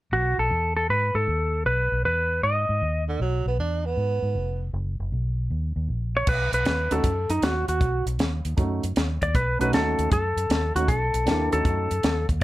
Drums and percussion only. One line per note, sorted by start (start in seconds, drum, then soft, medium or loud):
6.27 kick loud
6.27 crash medium
6.53 closed hi-hat medium
6.65 snare medium
6.65 closed hi-hat medium
6.91 closed hi-hat medium
7.04 kick loud
7.04 closed hi-hat medium
7.30 closed hi-hat medium
7.42 snare loud
7.42 closed hi-hat medium
7.68 closed hi-hat medium
7.81 kick loud
7.81 closed hi-hat medium
8.07 closed hi-hat medium
8.19 snare medium
8.19 closed hi-hat medium
8.45 closed hi-hat medium
8.58 kick loud
8.58 closed hi-hat medium
8.83 closed hi-hat medium
8.96 snare medium
8.96 closed hi-hat medium
9.22 kick medium
9.22 closed hi-hat medium
9.35 kick loud
9.35 closed hi-hat medium
9.61 closed hi-hat medium
9.73 snare medium
9.73 closed hi-hat medium
9.99 closed hi-hat medium
10.12 kick loud
10.12 closed hi-hat medium
10.38 closed hi-hat medium
10.50 snare medium
10.50 closed hi-hat medium
10.76 closed hi-hat medium
10.88 kick loud
10.88 closed hi-hat medium
11.14 closed hi-hat medium
11.27 snare medium
11.27 closed hi-hat medium
11.52 closed hi-hat medium
11.65 kick medium
11.65 closed hi-hat medium
11.91 closed hi-hat medium
12.03 snare loud
12.03 closed hi-hat medium
12.29 kick medium
12.29 closed hi-hat soft